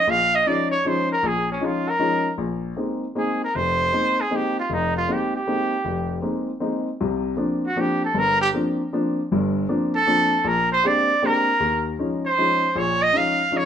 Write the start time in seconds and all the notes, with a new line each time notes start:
Already playing: D#5
0.07 A#1 F5
0.35 D#5
0.46 F3 G#3 C#4 D#4 D5
0.71 C#5
0.85 F3 G#3 C#4 D#4 C5
1.12 A#4
1.23 A#1 G#4
1.52 C#4
1.60 F3 G#3 C#4 D#4
1.65 F4
1.89 A#4
1.99 F3 G#3 C#4 D#4
2.38 A#1
2.76 G#3 A#3 C4 D#4
3.15 G#3 A#3 C4 D#4 G#4
3.44 A#4
3.55 F1 C5
3.92 G#3 A#3 C4 D#4
4.21 G#4
4.31 G#3 A#3 C4 D#4
4.35 G4
4.59 F4
4.70 F1 D#4
4.97 F4
5.08 G#3 A#3 C4 D#4 G4
5.36 G4
5.47 G#3 A#3 C4 D#4
5.85 F1
6.22 G#3 A#3 C4 D#4
6.60 G#3 A#3 C4 D#4
7.00 C2 C3
7.36 F3 A#3 C4 D4
7.66 F#4
7.76 F3 A#3 C4 D4 G4
8.04 A4
8.14 G1
8.18 A#4
8.41 G4
8.54 F3 A#3 C4 D4
8.93 F3 A#3 C4 D4
9.32 G1 G2
9.69 F3 A#3 C4 D4
9.95 A4
10.07 F3 A#3 C4 D4
10.45 A#1 A#4
10.72 C5
10.84 G#3 A#3 C4 D4 G4 D5
11.22 G#3 A#3 C4 D4 G4 A#4
11.60 D#2
11.99 F3 G#3 C#4 D#4
12.25 C5
12.38 F3 G#3 C#4 D#4
12.75 A#1 A#2 C#5
13.02 D#5
13.13 F3 G#3 C#4 D#4
13.17 F5
13.51 F3 G#3 C#4 D#4
13.57 C#5